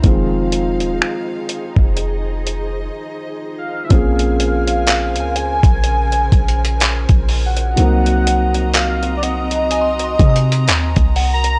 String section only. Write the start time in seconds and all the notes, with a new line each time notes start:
Already playing: C5
0.03 D#4 G#4 F5
1.96 D#5
3.90 C#3 A#4 C5 G#5
7.78 C4 F#4 D#5 A#5